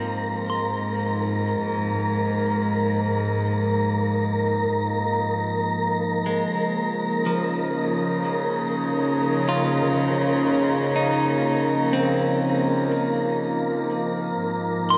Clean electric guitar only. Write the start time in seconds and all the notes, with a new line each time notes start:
Already playing: F3 C4 D#4
0.50 C6
6.26 G#3
7.26 F3
9.49 F4
10.96 D#4
11.93 C4
14.90 C6